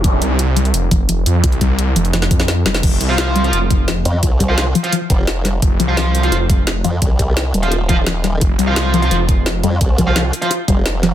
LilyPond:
<<
  \new Staff \with { instrumentName = "Distorted electric guitar" } { \time 4/4 \key c \phrygian \tempo 4 = 172 r1 | r1 | r8. <f' c'' f''>4 <f' c'' f''>16 r2 | r8. <f' c'' f''>16 r8. <f' c'' f''>16 r2 |
r8. <f' c'' f''>4 <f' c'' f''>16 r2 | r4. r16 <f' c'' f''>16 r8 <f' c'' f''>16 r4 r16 | r8. <f' c'' f''>4 <f' c'' f''>16 r2 | r8. <f' c'' f''>16 r8. <f' c'' f''>16 r2 | }
  \new Staff \with { instrumentName = "Synth arpeggio sound" } { \clef bass \time 4/4 \key c \phrygian f8 r8 f'8 g8 r8 f8 f8 r8 | f'8 g8 r8 f8 f8 r8 f'8 g8 | f8 r8 f'8 g8 r8 f8 f8 r8 | f'8 g8 r8 f8 f8 r8 f'8 g8 |
r8 f8 f8 r8 f'8 g8 r8 f8 | f8 r8 f'8 g8 r8 f8 f8 g8 | f'8 g8 r8 f8 f8 r8 f'8 g8 | r8 f8 f8 r8 f'8 g8 r8 f8 | }
  \new Staff \with { instrumentName = "Wobble bass" } { \clef bass \time 4/4 \key c \phrygian r1 | r1 | r2. r8 f,8 | c,4. r4 f,,4. |
r2. r8 f,8 | c,4. ees,,2~ ees,,8 | r2. r8 f,8 | c,4. r4 f,,4. | }
  \new Staff \with { instrumentName = "Detuned saw bass" } { \clef bass \time 4/4 \key c \phrygian f,,8 c,4. f,,4. f,8 | c,4. f,,4 f,4 f,,8 | f,,8 c,4. f,,4. r8 | r1 |
f,,8 c,4. f,,4. r8 | r1 | f,,8 c,4. f,,4. r8 | r1 | }
  \new DrumStaff \with { instrumentName = "Drums" } \drummode { \time 4/4 <hh bd>8 hh8 hh8 hh16 hh16 hh8 <hh bd>8 hh8 hh8 | <hh bd>16 hh16 <hh bd>8 hh8 hh16 hh16 <hh sn>16 sn16 <hh bd>16 <hh sn>16 <hh sn>8 <hh sn>16 sn16 | <cymc hh bd>8 hh8 <hh sn>8 hh16 hh16 hh8 <hh bd>8 <hh sn>8 hh8 | <hh bd>8 <hh bd>8 <hh sn>8 hh16 hh16 hh8 <hh bd>8 <hh sn>8 <hh sn>8 |
<hh bd>8 hh8 <hh sn>8 hh16 hh16 hh8 <hh bd>8 <hh sn>8 hh8 | <hh bd>8 <hh bd>8 <hh sn>8 hh16 hh16 hh8 <hh bd>8 <hh sn>8 <hh sn>8 | <hh bd>8 hh8 <hh sn>8 hh16 hh16 hh8 <hh bd>8 <hh sn>8 hh8 | <hh bd>8 <hh bd>8 <hh sn>8 hh16 hh16 hh8 <hh bd>8 <hh sn>8 <hh sn>8 | }
>>